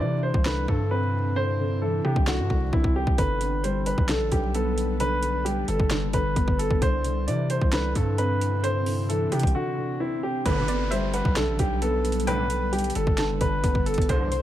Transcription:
Already playing: ambient pad C3 C4 D4 E4, grand piano D3
0.00 808-style bass C3, grand piano E3 D5
0.23 grand piano C5
0.34 808-style bass C2, kick
0.45 grand piano D3 B4, snare
0.68 808-style bass G2, grand piano D3 A4, kick
0.91 grand piano C4 B4
1.36 grand piano D3 C5
1.59 grand piano D3
1.82 grand piano E3 A4
2.04 808-style bass C3, grand piano G4
2.16 808-style bass C2, kick
2.27 grand piano D3 F#4, snare
2.39 808-style bass G2
2.50 808-style bass C2, grand piano D3, kick
2.73 808-style bass C2, grand piano C4 E4, kick
2.84 808-style bass C2, kick
2.96 grand piano G4
3.07 808-style bass C2, kick
3.18 808-style bass G1, grand piano D3 B4, ambient pad G3 A4 B4, kick, closed hi-hat
3.41 grand piano D3, closed hi-hat
3.63 grand piano G3 C5, closed hi-hat
3.86 grand piano B4, closed hi-hat
3.98 808-style bass B1, kick
4.08 grand piano D3 A4, snare, closed hi-hat
4.20 808-style bass A1
4.32 808-style bass B1, grand piano D3 G4, kick, closed hi-hat
4.55 grand piano B3 A4, closed hi-hat
4.78 closed hi-hat
5.00 grand piano D3 B4, closed hi-hat
5.22 grand piano D3, closed hi-hat
5.45 grand piano G3 G4, closed hi-hat
5.68 808-style bass G1, grand piano A4, closed hi-hat
5.80 808-style bass G1, kick
5.90 grand piano D3, snare, closed hi-hat
6.02 808-style bass F#1
6.13 808-style bass G1, grand piano D3 B4, kick, closed hi-hat
6.36 808-style bass G1, grand piano B3, kick, closed hi-hat
6.48 808-style bass G1, kick
6.59 grand piano A4, closed hi-hat
6.71 808-style bass G1, kick
6.82 808-style bass C2, ambient pad C3 C4 D4 E4, grand piano D3 C5, kick, closed hi-hat
7.04 grand piano D3, closed hi-hat
7.27 808-style bass C3, grand piano E3 D5, closed hi-hat
7.50 grand piano C5, closed hi-hat
7.61 808-style bass C2, kick
7.72 grand piano D3 B4, snare, closed hi-hat
7.95 808-style bass G2, grand piano D3 A4, kick, closed hi-hat
8.18 grand piano C4 B4, closed hi-hat
8.41 closed hi-hat
8.63 grand piano D3 C5, closed hi-hat
8.86 grand piano D3, open hi-hat
9.09 grand piano E3 A4, closed hi-hat
9.32 808-style bass C3, grand piano G4, closed hi-hat
9.39 808-style bass C2, kick, closed hi-hat
9.47 closed hi-hat
9.55 grand piano D3 F#4
9.77 grand piano D3
10.00 grand piano C4 E4
10.23 grand piano G4
10.45 808-style bass G1, analog polysynth B1 A2 D3, grand piano D3 B4, ambient pad G3 D4 A4 B4, kick, closed hi-hat, downlifter
10.68 grand piano D3, synth pluck D5, closed hi-hat
10.91 grand piano G3 C5, synth pluck E5, closed hi-hat
11.14 grand piano B4, synth pluck F#5, closed hi-hat
11.25 808-style bass B1, kick
11.36 grand piano D3 A4, snare, closed hi-hat
11.48 808-style bass A1
11.59 808-style bass B1, grand piano D3 G4, kick, closed hi-hat
11.82 grand piano B3 A4, closed hi-hat
12.05 closed hi-hat
12.12 closed hi-hat
12.20 closed hi-hat
12.27 analog polysynth B1 A2 D3, grand piano D3 B4, synth pluck G5, closed hi-hat
12.50 grand piano D3, closed hi-hat
12.72 grand piano G3 G4, closed hi-hat
12.79 closed hi-hat
12.84 closed hi-hat
12.90 closed hi-hat
12.95 808-style bass G1, grand piano A4, closed hi-hat
13.07 808-style bass G1, kick
13.18 grand piano D3, synth pluck A5, snare, closed hi-hat
13.30 808-style bass F#1
13.41 808-style bass G1, grand piano D3 B4, kick, closed hi-hat
13.64 808-style bass G1, grand piano B3, kick, closed hi-hat
13.75 808-style bass G1, kick
13.86 grand piano A4, closed hi-hat
13.94 808-style bass G1, kick, closed hi-hat
14.02 closed hi-hat
14.09 analog polysynth G1 E2 D3, 808-style bass C2, ambient pad C3 C4 E4, grand piano D3 C5, kick, closed hi-hat
14.31 grand piano D3, synth pluck C5, closed hi-hat

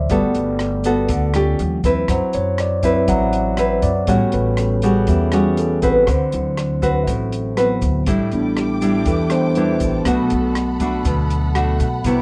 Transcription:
Already playing: tine electric piano C3 E3 F#3 C5 D5 E5
0.09 upright bass G1, nylon-string guitar G3 B3 F#4 A4, tine electric piano A3 B3 D5, kick, closed hi-hat, shaker
0.34 upright bass G1, closed hi-hat, shaker
0.59 cross-stick, closed hi-hat
0.84 nylon-string guitar B3 F#4 A4, closed hi-hat, shaker
1.08 upright bass D2, nylon-string guitar D3, kick, closed hi-hat, shaker
1.33 nylon-string guitar C#4 F4 G4, cross-stick, closed hi-hat, shaker
1.59 upright bass D#2, tine electric piano F3 G3, closed hi-hat
1.84 upright bass D#2, nylon-string guitar C4 E4 B4, tine electric piano B4, kick, closed hi-hat, shaker
2.08 upright bass F#2, nylon-string guitar F#3, tine electric piano C5, kick, cross-stick, closed hi-hat, shaker
2.33 upright bass F#2, tine electric piano C#5, closed hi-hat, shaker
2.58 tine electric piano D5, cross-stick, closed hi-hat
2.83 tine electric piano F#3 C4 E4 E5, nylon-string guitar C4 E4 B4, kick, closed hi-hat, shaker
3.08 upright bass A1, nylon-string guitar F#3, tine electric piano F#5, kick, closed hi-hat, shaker
3.33 closed hi-hat, shaker
3.57 nylon-string guitar C4 E4 B4, cross-stick, closed hi-hat, shaker
3.82 upright bass F#2, tine electric piano D5, kick, closed hi-hat, shaker
4.07 upright bass A1, nylon-string guitar A2 G3 C#4 F#4, tine electric piano G3 B3 C#4 F#4 C#5, kick, closed hi-hat, shaker
4.32 upright bass A1, tine electric piano B4, closed hi-hat, shaker
4.57 tine electric piano A4, cross-stick, closed hi-hat, shaker
4.82 nylon-string guitar G3 C#4 F#4, tine electric piano G#4, closed hi-hat, shaker
5.07 upright bass E2, nylon-string guitar E3, tine electric piano G3 B3 C#4 F#4 G4, kick, closed hi-hat, shaker
5.32 nylon-string guitar G3 C#4 F#4, tine electric piano G#4, cross-stick, closed hi-hat, shaker
5.57 tine electric piano A4, closed hi-hat, shaker
5.82 upright bass A1, nylon-string guitar C4 F#4 B4, tine electric piano B4, kick, closed hi-hat, shaker
6.07 upright bass D2, nylon-string guitar D3, tine electric piano C5, kick, cross-stick, closed hi-hat, shaker
6.32 upright bass D2, tine electric piano F#3 C4 E4, closed hi-hat, shaker
6.57 cross-stick, closed hi-hat
6.82 nylon-string guitar C4 F#4 B4, kick, closed hi-hat, shaker
7.07 upright bass A1, nylon-string guitar A2, kick, closed hi-hat, shaker
7.32 closed hi-hat, shaker
7.57 tine electric piano F#3 B3 C4 E4, nylon-string guitar C4 F#4 B4, cross-stick, closed hi-hat, shaker
7.82 upright bass D2, kick, closed hi-hat, shaker
8.06 upright bass A1, nylon-string guitar A2 G3 D4 E4, string section A4 G5 D6, kick, closed hi-hat, shaker
8.31 upright bass A1, tine electric piano G3 B3 D4, closed hi-hat, shaker
8.56 tine electric piano G4, cross-stick, closed hi-hat
8.81 nylon-string guitar G3 D4 E4, closed hi-hat, shaker
9.06 upright bass E2, nylon-string guitar E3, tine electric piano A4, kick, closed hi-hat, shaker
9.30 tine electric piano G3 B3 D4 C5, cross-stick, closed hi-hat, shaker
9.55 nylon-string guitar G3 D4 E4, tine electric piano B4, closed hi-hat
9.80 upright bass A1, kick, closed hi-hat, shaker
10.05 upright bass B1, nylon-string guitar B2 A3 D4 F#4, tine electric piano F#3 A3 B3, string section F#5 B5, kick, cross-stick, closed hi-hat, shaker
10.30 upright bass B1, closed hi-hat, shaker
10.55 cross-stick, closed hi-hat
10.80 nylon-string guitar A3 D4 F#4, kick, closed hi-hat, shaker
11.05 upright bass D2, nylon-string guitar B2, kick, closed hi-hat, shaker
11.30 closed hi-hat, shaker
11.55 nylon-string guitar A3 D4 F#4, cross-stick, closed hi-hat
11.80 upright bass B1, kick, closed hi-hat, shaker
12.04 upright bass C2, nylon-string guitar C3 B3 E4 F#4, string section E5 B5 D6, kick, closed hi-hat, shaker

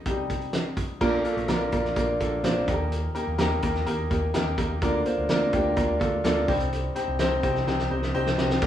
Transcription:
Already playing: grand piano C3 G3 A#3 D#4 A#4 D#5
0.06 grand piano C3 G3 D#4, kick, closed hi-hat
0.30 kick, closed hi-hat
0.41 closed hi-hat
0.53 snare, closed hi-hat
0.77 kick, closed hi-hat
1.01 picked electric bass A#1, grand piano A#2 F3 A#3 D4 F4 A#4, kick, crash
1.24 grand piano A#3 D4 F4 A4, closed hi-hat
1.37 picked electric bass A#1, closed hi-hat
1.48 picked electric bass A#1, grand piano A#3 D4 F4 A#4, snare, closed hi-hat
1.72 picked electric bass A#1, grand piano A#3 D4 F4 A#4, kick, closed hi-hat
1.85 snare
1.96 picked electric bass A#1, grand piano A#3 D4 F4 A#4, kick, closed hi-hat
2.20 picked electric bass A#1, grand piano A#3 D4 F4 A4, kick, closed hi-hat
2.43 picked electric bass A#1, grand piano A#3 D4 F4 C5, snare, closed hi-hat
2.68 picked electric bass D#2, grand piano A#2 A#3 D#4 G4 A4, kick, closed hi-hat
2.74 grand piano A#4
2.92 closed hi-hat
3.15 grand piano A#3 D#4 G4 A#4, closed hi-hat
3.27 picked electric bass D#2
3.38 picked electric bass D#2, grand piano A#3 D#4 G4 A#4, snare, closed hi-hat
3.62 picked electric bass D#2, grand piano A#3 D#4 G4 A#4, kick, closed hi-hat
3.75 snare
3.86 picked electric bass D#2, grand piano A#3 D#4 G4 A#4, closed hi-hat
4.10 picked electric bass D#2, grand piano A#3 D#4 G4 A#4, kick, closed hi-hat
4.34 picked electric bass D#2, grand piano A#3 D#4 G4 A#4, snare, closed hi-hat
4.58 picked electric bass D#2, grand piano A#3 D#4 G4 A#4, kick, closed hi-hat
4.82 picked electric bass D2, grand piano D3 A#3 D4 F4 A#4, kick, closed hi-hat
5.05 grand piano A#3 D4 F4 C5, closed hi-hat
5.18 picked electric bass D2
5.29 picked electric bass D2, grand piano A#3 D4 F4 A#4, snare, closed hi-hat
5.53 picked electric bass D2, grand piano A#3 D4 F4 G4, kick, closed hi-hat
5.76 picked electric bass D2, grand piano A#3 D4 F4 A#4, kick, closed hi-hat
6.00 picked electric bass D2, grand piano A#3 D4 F4 A4, kick, closed hi-hat
6.24 picked electric bass D2, grand piano A#3 D4 F4 A4, snare, closed hi-hat
6.48 picked electric bass C2, grand piano G2 C4 D#4 G4 C5, kick, open hi-hat
6.60 closed hi-hat
6.73 closed hi-hat
6.95 grand piano C4 D#4 G4 C5, closed hi-hat
7.08 picked electric bass C2
7.19 picked electric bass C2, grand piano C4 D#4 G4 C5, snare, closed hi-hat
7.43 picked electric bass C2, grand piano C4 D#4 G4 C5, kick, closed hi-hat
7.55 snare
7.67 picked electric bass C2, grand piano C4 D#4 G4 C5, snare
7.79 snare
7.91 picked electric bass C2, grand piano C4 D#4 G4 C5
8.03 snare
8.15 picked electric bass C2, grand piano C4 D#4 G4 C5 G5
8.27 snare
8.38 picked electric bass C2, grand piano C4 D#4 G4 C5 D#5, snare
8.50 snare
8.62 picked electric bass A#1, grand piano A#2 F3 D4 F4 A#4 D5, kick, crash

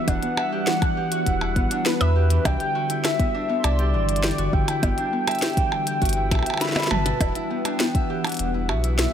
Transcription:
Already playing: harp E3 B3 E4 F#4 E5, analog synth pad E3 G3 B3 B4
0.08 sub bass E1, harp D4, soft synth lead F#5, kick, closed hi-hat, percussion blips
0.23 harp B3, closed hi-hat
0.37 harp E5, percussion blips
0.52 harp G4
0.67 harp E3, snare, closed hi-hat
0.82 kick, closed hi-hat, percussion blips
0.97 harp G4
1.12 harp F#4, closed hi-hat
1.26 sub bass E1, harp E4, kick, closed hi-hat
1.41 harp E4, percussion blips
1.56 sub bass A1, harp B3, kick, closed hi-hat
1.71 harp D4, closed hi-hat
1.86 harp B3, soft synth lead B4, snare, closed hi-hat
2.01 sub bass E2, harp E5, closed hi-hat, percussion blips
2.16 harp G4
2.30 harp E3, closed hi-hat
2.45 sub bass C2, analog synth pad D3, soft synth lead G5, kick, closed hi-hat, percussion blips
2.60 harp G4, closed hi-hat
2.75 harp F#4
2.90 harp E4, closed hi-hat
3.05 harp E4, soft synth lead E5, snare, closed hi-hat, percussion blips
3.20 harp B3, kick, closed hi-hat
3.34 harp D4
3.43 analog synth pad C6
3.49 harp B3
3.64 sub bass C2, soft synth lead D5, harp E5, closed hi-hat, percussion blips
3.79 harp G4, closed hi-hat
3.94 sub bass G1, harp E3
4.09 closed hi-hat
4.16 closed hi-hat
4.24 harp G4, snare, closed hi-hat
4.31 closed hi-hat
4.38 sub bass G1, harp F#4, closed hi-hat
4.53 sub bass G1, harp E4, soft synth lead G5, kick
4.68 harp E4, closed hi-hat, percussion blips
4.83 sub bass G1, harp B3, kick, closed hi-hat, percussion blips
4.98 harp D4, closed hi-hat
5.13 harp B3
5.28 analog synth pad B3, harp E5, closed hi-hat, percussion blips
5.31 closed hi-hat
5.35 closed hi-hat
5.39 snare, closed hi-hat
5.42 harp G4, analog synth pad G5, closed hi-hat
5.50 closed hi-hat
5.53 harp E3, kick, closed hi-hat
5.57 closed hi-hat
5.72 percussion blips
5.80 analog synth pad B4
5.87 harp G4, closed hi-hat
6.02 sub bass G1, harp F#4, kick, closed hi-hat
6.05 closed hi-hat
6.09 closed hi-hat
6.13 harp E4, closed hi-hat
6.31 sub bass B1, harp E5, kick, snare, closed hi-hat, percussion blips
6.35 percussion blips
6.39 percussion blips
6.43 harp E5, closed hi-hat, percussion blips
6.50 percussion blips
6.54 percussion blips
6.57 harp E4, soft synth lead B5, snare, closed hi-hat, percussion blips
6.65 snare
6.69 snare
6.72 snare
6.76 harp D4, snare, percussion blips
6.80 snare
6.83 snare, closed hi-hat
6.87 sub bass G1, harp B4, soft synth lead A5, snare, mid tom, percussion blips
7.06 harp E4, snare, closed hi-hat
7.21 sub bass E1, analog synth pad E3, harp E4, kick, closed hi-hat, percussion blips
7.35 harp E4, closed hi-hat
7.50 harp B3, soft synth lead G5
7.65 harp D4, closed hi-hat, percussion blips
7.80 harp B3, snare, closed hi-hat
7.95 harp E5, kick, closed hi-hat
8.10 harp G4, soft synth lead F#5
8.24 harp E3, closed hi-hat, percussion blips
8.27 closed hi-hat
8.29 closed hi-hat
8.32 closed hi-hat
8.34 closed hi-hat
8.37 closed hi-hat
8.39 sub bass E1, closed hi-hat
8.54 harp E4
8.69 sub bass B1, harp F#4, soft synth lead E5, percussion blips
8.84 harp E4, closed hi-hat
8.99 harp E4, snare, closed hi-hat

